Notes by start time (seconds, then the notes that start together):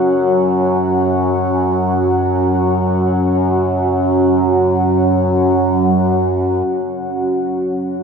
Already playing: F#2 F#3 C#4 F#4 C#5 F#5
6.70 F#2 F#3